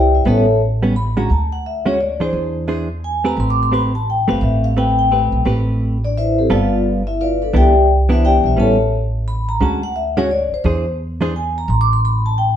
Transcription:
Already playing: upright bass C2, vibraphone G4 D5 E5 G5
0.15 vibraphone E4 B4 C5 E5
0.25 upright bass A1, hollow-body jazz guitar G3 B3 C#4, vibraphone A4 C#5 E5 A5
0.82 hollow-body jazz guitar G3 B3 C#4
0.96 vibraphone B5
1.17 hollow-body jazz guitar D3 G#3 C#4 F#4, vibraphone A#5
1.30 upright bass D2, vibraphone A5
1.52 vibraphone F#5
1.66 vibraphone E5
1.85 hollow-body jazz guitar D3 G#3 C#4 F#4, vibraphone C#5
2.01 vibraphone D5
2.20 hollow-body jazz guitar E3 D4 G#4 C5, vibraphone C5
2.33 upright bass E2
2.68 hollow-body jazz guitar E3 D4 G#4 C5
3.04 vibraphone G#5
3.24 hollow-body jazz guitar A3 C4 G4 B4, vibraphone A#5
3.37 upright bass A1, vibraphone C6
3.50 vibraphone D6
3.63 vibraphone C6
3.72 hollow-body jazz guitar A3 C4 G4 B4, vibraphone B5
3.95 vibraphone A5
4.10 vibraphone G5
4.28 upright bass G1, hollow-body jazz guitar A3 C4 G4 B4, vibraphone F5
4.41 upright bass A1, vibraphone E5
4.64 vibraphone F5
4.76 hollow-body jazz guitar A3 C4 G4 B4, vibraphone G5
4.99 vibraphone G5
5.11 hollow-body jazz guitar A3 C4 G4 B4
5.32 upright bass A#1
5.45 upright bass A1, hollow-body jazz guitar A3 C4 G4 B4
6.04 vibraphone D4 D5
6.17 vibraphone E4 B4 C5 E5
6.39 vibraphone C4 G4 A4 C5
6.50 upright bass G1, hollow-body jazz guitar G3 B3 F4 A4, vibraphone F4 B4 D5 F5
7.07 vibraphone E4 E5
7.21 vibraphone F4 B4 D5 F5
7.42 vibraphone D4 A4 B4 D5
7.53 upright bass C2, hollow-body jazz guitar E3 B3 D4, vibraphone G4 D5 E5 G5
8.09 hollow-body jazz guitar E3 B3 D4, vibraphone E4 B4 C5 E5
8.25 vibraphone G4 D5 E5 G5
8.44 upright bass B1, vibraphone E4 B4 C5 E5
8.56 upright bass A1, hollow-body jazz guitar G3 B3 C#4, vibraphone A4 C#5 E5 A5
9.28 vibraphone B5
9.49 vibraphone A#5
9.60 upright bass D2, hollow-body jazz guitar D3 G#3 C#4 F#4, vibraphone A5
9.83 vibraphone F#5
9.96 vibraphone E5
10.17 hollow-body jazz guitar D3 G#3 C#4 F#4, vibraphone C#5
10.31 vibraphone D5
10.52 vibraphone C5, muted upright bass stroke
10.64 upright bass E2, hollow-body jazz guitar E3 D4 G#4 C5
11.21 hollow-body jazz guitar E3 D4 G#4 C5
11.36 vibraphone G#5
11.58 vibraphone A#5
11.68 upright bass A1, vibraphone C6
11.81 vibraphone D6
11.93 vibraphone C6
12.05 vibraphone B5
12.26 vibraphone A5
12.38 vibraphone G5

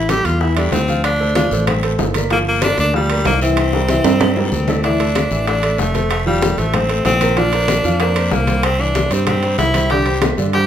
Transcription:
Already playing: fingered electric bass A1, tenor saxophone E4
0.09 grand piano G3 G4 A4, tenor saxophone G4, high bongo, high conga, high timbale, low timbale, short guiro, claves
0.25 fingered electric bass E2, tenor saxophone F4, high bongo, high conga, high timbale, short guiro
0.41 grand piano E3 E4 E5, tenor saxophone E4, high bongo, high conga, long guiro
0.57 grand piano G3 G4 A4, tenor saxophone D4, high bongo, high timbale, claves
0.72 fingered electric bass D2, tenor saxophone C4, high bongo, low bongo, high conga, high timbale, low timbale, short guiro
0.87 grand piano F3 F4 F5, high bongo, high conga, short guiro
1.04 tenor saxophone D4, high bongo, high conga, high timbale, long guiro, claves
1.19 grand piano A3 A4 C5, high conga
1.35 grand piano F3 F4 F5, tenor saxophone D4, high bongo, high conga, high timbale, low timbale, short guiro
1.51 fingered electric bass A1, grand piano A3 A4 C5, high bongo, high conga, short guiro
1.67 tenor saxophone C4, high bongo, high conga, low conga, high timbale, long guiro, claves
1.83 grand piano A3 A4 C5, high conga, high timbale
1.98 fingered electric bass G1, high bongo, low bongo, high conga, low timbale, short guiro
2.14 grand piano A#3 A#4 D5, high bongo, high conga, high timbale, short guiro, claves
2.30 grand piano F3 F4 F5, tenor saxophone A#3, high bongo, high conga, high timbale, long guiro
2.46 tenor saxophone A#3, high conga
2.62 grand piano A#3 A#4 D5, tenor saxophone D4, high bongo, high conga, high timbale, low timbale, short guiro, claves
2.78 fingered electric bass D2, tenor saxophone D4, high bongo, high conga, high timbale, short guiro
2.94 grand piano F3 F4 F5, tenor saxophone G3, high bongo, high conga, long guiro
3.10 grand piano A#3 A#4 D5, high bongo, high timbale, claves
3.25 fingered electric bass C2, tenor saxophone A#3, high bongo, low bongo, high conga, high timbale, low timbale, short guiro
3.41 grand piano E3 E4 E5, tenor saxophone C4, high bongo, high conga, short guiro
3.57 high bongo, high timbale, long guiro, claves
3.73 grand piano G3 G4 A#4, high bongo, high conga
3.88 grand piano E3 E4 E5, high conga, high timbale, low timbale, short guiro
4.04 fingered electric bass G2, grand piano G3 G4 A#4, low bongo, high conga, high timbale, short guiro
4.20 low bongo, high conga, low conga, high timbale, long guiro, claves
4.36 grand piano G3 G4 A#4, low bongo, high conga, low timbale
4.52 fingered electric bass D2, tenor saxophone C4, high conga, short guiro
4.68 grand piano A3 A4 D5, low bongo, high conga, low timbale, short guiro, claves
4.84 grand piano E3 E4 E5, tenor saxophone D4, high bongo, high conga, high timbale, long guiro
4.99 grand piano A3 A4 D5, high bongo, high conga, high timbale
5.15 high bongo, high conga, high timbale, short guiro, claves
5.31 fingered electric bass A1, grand piano E3 E4 E5, high conga, short guiro
5.46 grand piano A3 A4 D5, tenor saxophone D4, high bongo, high conga, high timbale, long guiro
5.63 grand piano A3 A4 D5, high bongo, high conga, high timbale, claves
5.78 fingered electric bass F1, tenor saxophone A3, high bongo, low bongo, high conga, short guiro
5.94 grand piano A3 A4 C5, high bongo, high conga, high timbale, short guiro
6.10 tenor saxophone A3, high bongo, high conga, high timbale, long guiro, claves
6.26 grand piano F3 F4 F5, tenor saxophone G3, high bongo, high conga
6.42 high bongo, high conga, high timbale, short guiro
6.58 fingered electric bass A1, grand piano A3 A4 C5, tenor saxophone A3, high bongo, high timbale, short guiro
6.73 grand piano A3 A4 C5, tenor saxophone C4, high bongo, high conga, low conga, high timbale, long guiro, claves
6.89 grand piano A3 A4 C5, high conga, high timbale
7.05 fingered electric bass A#1, tenor saxophone C4, high bongo, low bongo, high conga, high timbale, low timbale, short guiro
7.21 grand piano A#3 A#4 C5, high bongo, high conga, high timbale, short guiro, claves
7.37 grand piano F3 F4 F5, tenor saxophone D4, high bongo, high conga, high timbale, long guiro
7.52 grand piano A#3 A#4 C5, high bongo, high conga, high timbale
7.68 high bongo, high conga, high timbale, short guiro, claves
7.84 fingered electric bass F2, grand piano F3 F4 F5, high conga, short guiro
8.00 grand piano A#3 A#4 C5, tenor saxophone D4, high bongo, high conga, high timbale, long guiro
8.15 grand piano A#3 A#4 C5, high conga, high timbale, claves
8.31 fingered electric bass C2, tenor saxophone A#3, high bongo, low bongo, high conga, low timbale, short guiro
8.47 grand piano G3 G4 C5, high bongo, high conga, high timbale, short guiro
8.63 tenor saxophone C4, high bongo, high conga, high timbale, long guiro, claves
8.79 grand piano E3 E4 E5, tenor saxophone D4, high bongo, high conga
8.95 high bongo, high conga, high timbale, short guiro
9.11 fingered electric bass G2, grand piano G3 G4 C5, tenor saxophone C4, high bongo, high timbale, short guiro
9.26 grand piano G3 G4 C5, tenor saxophone C4, high bongo, high conga, low conga, high timbale, long guiro, claves
9.43 grand piano G3 G4 C5, high conga, high timbale
9.58 fingered electric bass C2, tenor saxophone E4, high bongo, low bongo, high conga, high timbale, low timbale, short guiro
9.74 grand piano G3 G4 C5, high bongo, high conga, high timbale, short guiro, claves
9.90 grand piano D3 D4 D5, tenor saxophone G4, high bongo, high conga, high timbale, long guiro
10.06 grand piano G3 G4 C5, high bongo, high conga, high timbale
10.22 high bongo, high conga, high timbale, short guiro, claves
10.37 fingered electric bass G2, grand piano D3 D4 D5, high conga, short guiro
10.53 grand piano G3 G4 C5, tenor saxophone G4, high bongo, high conga, high timbale, long guiro

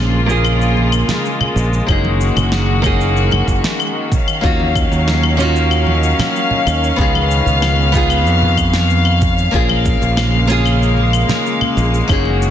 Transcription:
Already playing: fingered electric bass A#1, string section C#3 G#3 A#3 F4, nylon-string guitar A#3 C#4 F4 G#4
0.26 nylon-string guitar A#3 C#4 F4, cabasa
0.31 nylon-string guitar G#4
0.45 cabasa, claves
0.61 cabasa
0.77 high conga
0.92 cabasa, claves
1.09 snare, high conga, low conga, cabasa
1.25 cabasa
1.41 low conga, claves
1.56 fingered electric bass A#1, cabasa
1.73 cabasa
1.87 fingered electric bass F#1, string section D#3 A#3 F#4, nylon-string guitar A#3 C#4 D#4, kick, cabasa, claves
1.91 nylon-string guitar G#4
2.05 high conga
2.21 cabasa
2.36 fingered electric bass F#1, low conga, cabasa, claves
2.52 snare, cabasa
2.82 nylon-string guitar A#3 C#4 D#4, kick, cabasa, claves
2.86 nylon-string guitar G#4
3.01 cabasa
3.17 cabasa
3.31 high conga, low conga, claves
3.47 fingered electric bass F#1, kick, cabasa
3.64 snare, high conga, cabasa
3.80 cabasa, claves
4.12 string section F#3 C#4 F5, kick, low conga, cabasa
4.28 cabasa, claves
4.41 fingered electric bass D#2, nylon-string guitar A#3 C#4 F4, kick, cabasa
4.46 nylon-string guitar F#4
4.60 high conga
4.75 kick, cabasa, claves
4.92 fingered electric bass D#2, cabasa
5.08 snare, cabasa
5.23 claves
5.37 nylon-string guitar A#3 C#4 F4, cabasa
5.42 nylon-string guitar F#4
5.56 cabasa
5.71 cabasa, claves
5.87 high conga
6.04 cabasa
6.19 snare, high conga, low conga, cabasa, claves
6.36 cabasa
6.51 low conga
6.67 fingered electric bass D#2, cabasa, claves
6.84 cabasa
6.96 fingered electric bass C#2, nylon-string guitar B3 D#4 F4, string section B3, kick, cabasa
7.01 nylon-string guitar G#4
7.15 high conga, claves
7.31 cabasa
7.46 fingered electric bass C#2, low conga, cabasa
7.62 snare, cabasa, claves
7.92 nylon-string guitar B3 D#4 F4, kick, cabasa
7.96 nylon-string guitar G#4
8.10 cabasa, claves
8.26 fingered electric bass F2, cabasa
8.42 high conga, low conga
8.58 kick, cabasa, claves
8.74 snare, high conga, cabasa
8.90 cabasa
9.05 claves
9.21 kick, low conga, cabasa
9.38 cabasa
9.51 fingered electric bass A#1, string section C#3 G#3 A#3, nylon-string guitar A#3 C#4 F4, kick, cabasa
9.55 nylon-string guitar G#4
9.69 high conga, claves
9.86 kick, cabasa
10.02 fingered electric bass A#1, cabasa
10.17 snare, cabasa, claves
10.47 nylon-string guitar A#3 C#4 F4, cabasa
10.52 nylon-string guitar G#4
10.66 cabasa, claves
10.83 cabasa
10.97 high conga
11.13 cabasa, claves
11.29 snare, high conga, low conga, cabasa
11.46 cabasa
11.61 low conga, claves
11.77 fingered electric bass A#1, cabasa
11.94 cabasa
12.08 fingered electric bass F#1, string section D#3 F#4, nylon-string guitar A#3 C#4 D#4, kick, cabasa, claves
12.12 nylon-string guitar G#4
12.25 high conga
12.42 cabasa

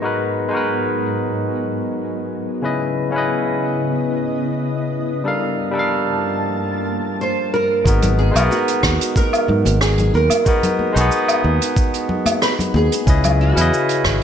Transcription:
Already playing: ambient pad G#2 F#3 B3
0.02 tine electric piano G#3 D#4 F#4 A#4 B4
0.49 tine electric piano G#3 D#4 F#4
0.55 tine electric piano A#4 B4
2.62 tine electric piano C#3 C#4 E4 B4 D#5, ambient pad C#3 E4 D#5
3.10 tine electric piano C#3 C#4 E4
3.16 tine electric piano B4 D#5
5.24 ambient pad G2 F3 A#3 A5, tine electric piano G3 D4 A4 A#4 F5
5.72 tine electric piano G3 D4 A4
5.77 tine electric piano A#4 F5
7.21 nylon-string guitar C5
7.54 nylon-string guitar A#4
7.84 fingered electric bass G#1, tine electric piano G#3 B3 D#4 F#4 A#4, kick, shaker
8.02 closed hi-hat, low conga, shaker
8.19 nylon-string guitar G#4
8.32 fingered electric bass B1, tine electric piano G#3 D#4 F#4, closed hi-hat
8.36 tine electric piano B3 A#4, low woodblock, shaker
8.51 nylon-string guitar F#4, shaker
8.68 closed hi-hat, shaker
8.83 fingered electric bass D#2, kick, cross-stick
9.01 closed hi-hat, shaker
9.16 nylon-string guitar A#4, kick, shaker
9.33 closed hi-hat, low woodblock, shaker
9.48 fingered electric bass G#2, low conga
9.65 fingered electric bass G#1, closed hi-hat, high conga, shaker
9.81 nylon-string guitar G#4, cross-stick, shaker
9.98 closed hi-hat, low conga, shaker
10.14 fingered electric bass D#2, nylon-string guitar A#4
10.30 closed hi-hat, high conga, low woodblock, shaker
10.45 tine electric piano G#3 B3 D#4 F#4 A#4, kick, shaker
10.63 closed hi-hat, low conga, shaker
10.79 high conga
10.93 fingered electric bass B1, tine electric piano G#3 D#4 F#4, closed hi-hat
10.97 tine electric piano B3 G#4, shaker
11.11 shaker
11.28 closed hi-hat, low woodblock, shaker
11.44 fingered electric bass D#2
11.62 closed hi-hat, shaker
11.76 kick, shaker
11.94 closed hi-hat, shaker
12.09 low conga
12.26 closed hi-hat, high conga, low woodblock, shaker
12.42 nylon-string guitar B4, cross-stick, shaker
12.59 closed hi-hat, low conga, shaker
12.74 fingered electric bass D#2, nylon-string guitar G#4, high conga
12.92 closed hi-hat, shaker
13.06 fingered electric bass C#2, tine electric piano C#3 C#4 E4 B4 D#5, kick, shaker
13.24 closed hi-hat, low conga, low woodblock, shaker
13.41 nylon-string guitar F#4
13.54 fingered electric bass E2, tine electric piano C#3 C#4 E4, closed hi-hat, shaker
13.60 tine electric piano B4 D#5
13.74 shaker
13.89 closed hi-hat, shaker
14.04 fingered electric bass G#1, kick, cross-stick

